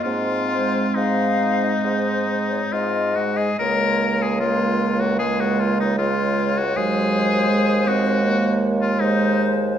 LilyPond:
<<
  \new Staff \with { instrumentName = "Flute" } { \time 4/4 \key aes \mixolydian \tempo 4 = 75 r8 c''8 f''8. ees''16 c''8. des''16 ees''4 | des''4 des''4 des''4 des''4 | c''2. c''4 | }
  \new Staff \with { instrumentName = "Oboe" } { \time 4/4 \key aes \mixolydian f'4 ees'2 f'8 ges'16 aes'16 | bes'8. aes'16 f'8. ges'16 aes'16 ges'16 f'16 ees'16 f'8. ges'16 | aes'4. ges'4~ ges'16 f'16 ees'8. r16 | }
  \new Staff \with { instrumentName = "French horn" } { \time 4/4 \key aes \mixolydian c'2.~ c'8 r8 | bes2. aes4 | ges4 aes8 c'8 bes4 aes4 | }
  \new Staff \with { instrumentName = "Clarinet" } { \clef bass \time 4/4 \key aes \mixolydian r8 aes4 aes4 aes4 aes8 | aes4 aes4 aes4 aes4 | aes2. aes4 | }
  \new Staff \with { instrumentName = "Bassoon" } { \clef bass \time 4/4 \key aes \mixolydian aes,4 aes,4 aes,4 aes,4 | des,1 | ees,1 | }
>>